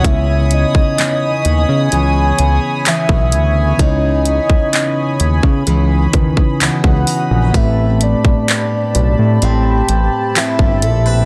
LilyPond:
<<
  \new Staff \with { instrumentName = "Analog synth pad" } { \time 4/4 \key cis \minor \tempo 4 = 64 <cis'' gis'' b'' dis'''>1~ | <cis'' gis'' b'' dis'''>1 | <c' g' a''>1 | }
  \new Staff \with { instrumentName = "Soft synth lead" } { \time 4/4 \key cis \minor e''8 dis''4. gis''4 e''4 | dis''2 r4 fis''4 | e''8 d''4. g''4 e''4 | }
  \new Staff \with { instrumentName = "Tine electric piano" } { \time 4/4 \key cis \minor <cis b cis' e' cis''>1 | <cis cis' dis' e' cis''>2~ <cis cis' dis' e' cis''>8 <cis cis' dis' e' b'>4. | <a, a c' g' b'>1 | }
  \new Staff \with { instrumentName = "Steel-string acoustic guitar" } { \time 4/4 \key cis \minor <cis e b>4 b4 e4 <e b>4 | <cis dis'>4 b4 e4 <e b dis'>8 dis'8 | <a b'>4 g'4 c'4 <c' g' b'>8 a'16 b'16 | }
  \new Staff \with { instrumentName = "Analog synth bass" } { \clef bass \time 4/4 \key cis \minor cis,8. dis,16 r8 dis,16 cis16 cis,8 cis,16 r8 b,,16 d,8 | cis,8. dis,16 r8 dis,16 cis16 cis,8 dis,16 r16 cis,16 cis,16 r16 ais,,16 | a,,8. b,,16 r8 b,,16 a,16 a,,8 a,,16 r8 g,,16 ais,,8 | }
  \new DrumStaff \with { instrumentName = "Drums" } \drummode { \time 4/4 <hh bd>8 hh16 bd16 <hc hh>8 hh8 hh8 hh8 <hc hh>16 bd16 hh8 | <hh bd>8 hh16 bd16 <hc hh>8 hh16 bd16 hh8 <hh bd>16 bd16 <hc hh>16 bd16 hho8 | <hh bd>8 hh16 bd16 <hc hh>8 hh8 hh8 hh8 <hc hh>16 bd16 hh8 | }
>>